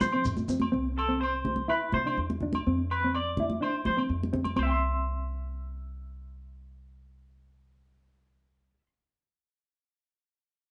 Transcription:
0.01 F3 C5, high conga, shekere
0.12 C4, low agogo
0.25 F2, shekere
0.37 high conga, shekere
0.48 C4, low conga, shekere
0.60 high conga, low agogo
0.72 C2 C4
0.98 A4, low agogo
1.09 C4
1.21 C5, low agogo
1.45 high conga, low conga
1.56 high conga
1.68 E4 B4, low agogo
1.92 C3 C5, high conga
2.06 D4, low agogo
2.17 E2
2.30 high conga
2.41 D4, low conga
2.53 high conga, low agogo
2.67 F2 C4
2.91 B4, low agogo
3.04 C4
3.15 D5, low agogo
3.37 E4, high conga, low conga
3.50 high conga
3.61 D4 C5, low agogo
3.85 F3 C5, high conga
3.97 C4, low agogo
4.09 F2
4.23 high conga
4.33 C4, low conga
4.44 high conga, low agogo
4.56 C2 C4 C5, high conga, low agogo
4.63 E5 G5
4.71 C6

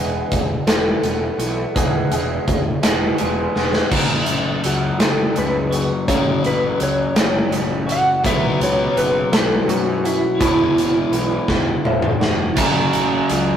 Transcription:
Already playing: E1 E3 G#3 B3 G#4 B4
0.32 E1, kick, closed hi-hat
0.66 E1 E3 B3 A4, snare, closed hi-hat
1.03 E1 E3 B3, closed hi-hat
1.38 B1 E3 B3, closed hi-hat
1.74 E1 E3 G#3 B3 G#4, kick, closed hi-hat
2.11 E1 E3 G#3 B3 G#4, closed hi-hat
2.48 E1, kick, closed hi-hat
2.83 E1 E3 G#3 B3 G#4, snare, closed hi-hat
3.18 E1 E3 G#3 B3 G#4, closed hi-hat
3.55 E1 E3 G#3 B3 G#4, snare
3.73 snare
3.90 F#1 F#2 C#3 F#3, kick, crash
4.26 A1 C#3, closed hi-hat
4.63 C#2 F#3 F#4, closed hi-hat
4.99 F#1 A3 A4, snare, closed hi-hat
5.35 C#2 C#4 B4, closed hi-hat
5.71 F#4, closed hi-hat
6.07 F#1 F#2 C#3 F#3 C#5, kick, closed hi-hat
6.43 A1 C#3 B4, closed hi-hat
6.78 C#2 F#3, closed hi-hat
6.83 C#5
7.15 F#1 A3, snare, closed hi-hat
7.20 C#5
7.50 A1 C#4, closed hi-hat
7.87 F#4, closed hi-hat
7.92 F#5
8.23 B1 B2 F#3 B3 E5, kick, closed hi-hat
8.60 C#2 F#3, closed hi-hat
8.64 C#5
8.95 F#1 F#3 B4, closed hi-hat
9.32 B1 B3 A4, snare, closed hi-hat
9.68 F#2 C#4 F#4, closed hi-hat
10.04 E4 F#4, closed hi-hat
10.39 E1 E2 B2 E3 E4, kick, closed hi-hat
10.75 F#1 B2, closed hi-hat
11.11 B1 E3, closed hi-hat
11.48 E1 B3, kick, snare
11.84 E1 E4, mid tom
12.02 mid tom
12.20 F#4, snare
12.56 F#1 F#2 C#3 F#3, kick, closed hi-hat, crash
12.93 A1, closed hi-hat
13.29 C#2, closed hi-hat

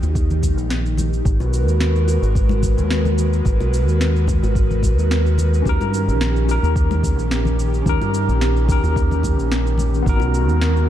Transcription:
Already playing: D#3 D#4 G4
0.03 D#2, high bongo, shaker
0.15 kick, shaker
0.31 low conga, shaker
0.43 kick, high conga, shaker
0.58 A#1, shaker
0.70 snare, shaker
0.86 shaker
0.97 high conga, low conga, shaker
1.13 shaker
1.25 G#1 G#3 F#4 A#4 B4, kick, shaker
1.40 B1, high bongo, shaker
1.53 shaker
1.67 D#2, shaker
1.80 snare, shaker
1.96 shaker
2.08 high bongo, shaker
2.22 G#1, shaker
2.35 kick, shaker
2.49 high conga, shaker
2.63 kick, low conga, shaker
2.77 D#2, high bongo, shaker
2.90 snare, shaker
3.05 low conga, shaker
3.18 shaker
3.33 shaker
3.45 G#1, kick, high conga, shaker
3.60 B1, high bongo, shaker
3.74 shaker
3.88 D#2, shaker
4.01 snare, shaker
4.16 shaker
4.27 kick, low conga, shaker
4.43 G#1, high bongo, shaker
4.55 kick, shaker
4.70 low conga, shaker
4.83 kick, high conga, shaker
4.98 D#2, shaker
5.11 snare, shaker
5.26 shaker
5.38 high bongo, high conga, low conga, shaker
5.54 shaker
5.62 D#2 C#4 D#4, kick
5.66 D#3 C#4 G4 A#4, shaker
5.80 G2, high bongo, shaker
5.94 shaker
6.08 A#1, shaker
6.21 snare, shaker
6.36 shaker
6.45 C#4 D#4
6.49 G4 A#4, high bongo, shaker
6.63 D#2, shaker
6.76 kick, shaker
6.91 high conga, shaker
7.03 kick, low conga, shaker
7.18 A#1, high bongo, shaker
7.31 snare, shaker
7.45 low conga, shaker
7.59 shaker
7.74 shaker
7.82 D#2 C#4 D#4, kick, high conga
7.87 G4 A#4, shaker
8.01 G2, high bongo, shaker
8.14 shaker
8.28 A#1, shaker
8.41 snare, shaker
8.57 shaker
8.65 C#4 D#4, kick, low conga
8.69 G4 A#4, shaker
8.83 D#2, high bongo, shaker
8.96 kick, shaker
9.11 low conga, shaker
9.23 kick, high conga, shaker
9.39 A#1, shaker
9.52 snare, shaker
9.67 shaker
9.78 high conga, low conga, shaker
9.94 shaker
10.02 G#1 G#3 B3 D#4 F#4 A#4, kick
10.07 F#4 A#4, shaker
10.20 B1, high bongo, shaker
10.34 shaker
10.49 D#2, shaker
10.61 snare, shaker
10.77 shaker
10.85 B3

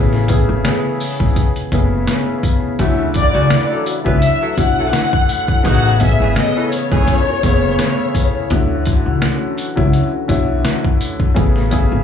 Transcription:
Already playing: A1 C#3 E3 A3 B3 G#4
0.13 snare
0.28 C#3 A3 B3 G#4, kick, closed hi-hat, tambourine
0.49 G#1
0.65 C#3 A3 B3 G#4, snare, closed hi-hat
1.00 open hi-hat, tambourine
1.20 G#1, kick
1.36 kick, closed hi-hat
1.56 closed hi-hat
1.72 F#1 C#3 A3 B3 G#4, kick, closed hi-hat, tambourine
2.07 snare, closed hi-hat
2.43 kick, closed hi-hat, tambourine
2.79 D2 C#3 D3 E3 F#3 A3 E4 F#4, kick, closed hi-hat
3.14 D5, kick, closed hi-hat, tambourine
3.34 C#2 C#3 A3 F#4
3.50 snare, closed hi-hat
3.70 F#3 E4 A4
3.86 closed hi-hat, tambourine
4.04 C#2 D3 F#3 B3 C#4 E4 G#4 B4, kick
4.20 E5, closed hi-hat
4.42 F#3 E4 A4
4.57 B1 D3 F#3 C#4 E4 F#5, kick, closed hi-hat, tambourine
4.78 F#3 E4 A4
4.93 snare, closed hi-hat
5.13 kick
5.29 closed hi-hat, tambourine
5.48 kick
5.63 A1 C#3 E3 F#3 A3 B3 D#4 F#4 G#4 F#5, kick, closed hi-hat
5.99 C#3 A3 B3 G#4 E5, kick, closed hi-hat, tambourine
6.20 G#1 E3 C#4 G#4
6.36 C#3 A3 B3 G#4 D#5, snare, closed hi-hat
6.56 E3 C#4 A4
6.72 C#5, closed hi-hat, tambourine
6.92 G#1 E3 C#4 G#4, kick
7.08 kick, closed hi-hat
7.43 F#1 C#3 A3 B3 G#4, kick, closed hi-hat, tambourine
7.79 snare, closed hi-hat
8.15 kick, closed hi-hat, tambourine
8.50 D2 D3 F#3 C#4 E4 F#4, kick, closed hi-hat
8.85 kick, closed hi-hat, tambourine
9.06 C#2
9.22 snare, closed hi-hat
9.58 closed hi-hat, tambourine
9.75 C#2 D3 F#3 C#4 E4, kick
9.93 closed hi-hat
10.28 B1 D3 F#3 C#4 E4, kick, closed hi-hat, tambourine
10.65 snare, closed hi-hat
10.85 kick
11.01 closed hi-hat, tambourine
11.20 kick
11.34 A1 C#3 A3 B3 G#4, kick, closed hi-hat
11.56 snare
11.71 C#3 A3 B3 G#4, kick, closed hi-hat, tambourine
11.92 G#1

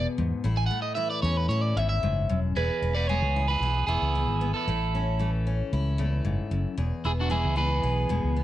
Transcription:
Already playing: B2 E3 G#3 B3 G#4
0.18 E2 G#2
0.44 A1 A2 E4
0.57 G#5
0.66 F#5
0.71 A3
0.82 D#5
0.95 E3 E4 E5
1.10 D5
1.22 E2 C#4 C#5
1.37 B4
1.48 A2 E4 C#5
1.62 D5
1.76 G#1 E2 E5
1.89 E5
2.03 F#1 G#2
2.29 E1 F#2
2.56 E1 E2 E4 G#4 B4
2.82 E1 E4
2.94 B4 D5
3.07 G#3 B3 G#4 C#5
3.22 C#2
3.36 E4
3.48 G#4 B4
3.60 B1 E4
3.87 E1 E2 B3 E4 G#4
4.01 C#2
4.15 E4
4.28 G#1
4.41 B3
4.54 E4 A4
4.67 A1 A2 E4
4.95 C#4
5.19 E3 A3
5.47 C#4
5.72 C#2 E4
5.98 E2 A3
6.24 F#1 G#2
6.51 F#1 F#2
6.77 E1 E2 G#4
7.04 E1 B3 E4 G#4
7.20 D4 F#4
7.30 E3 G#3 E4 G#4
7.45 C#2
7.56 B3 G#4 B4
7.83 B1 G#4
8.09 E1 B2 G#3
8.24 C#2
8.36 B3

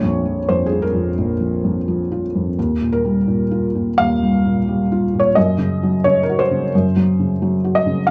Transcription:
Already playing: A#1 C#5
0.03 F2
0.25 F3
0.49 F2 C5
0.66 G#4
0.72 F4
0.82 A#4
0.94 F2
1.18 A#1
1.40 F3
1.65 F2
1.88 F3
2.12 F4
2.35 F2
2.58 D#2
2.81 A#2
2.92 A#4
3.05 G3
3.28 A#2
3.51 F4
3.75 A#2
3.98 D#2 F5
4.23 G3
4.46 A#2
4.68 G3
4.92 F4
5.14 A#2
5.20 C#5
5.35 F#2 D#5
5.58 C#3
5.83 F#3
6.04 C#3 C#5
6.23 A#4
6.29 F#4
6.39 C5
6.51 C#3
6.75 F#2
6.96 F#3
7.19 C#3
7.42 F#3
7.64 F#4
7.75 D#5
7.86 C#3
8.07 F5

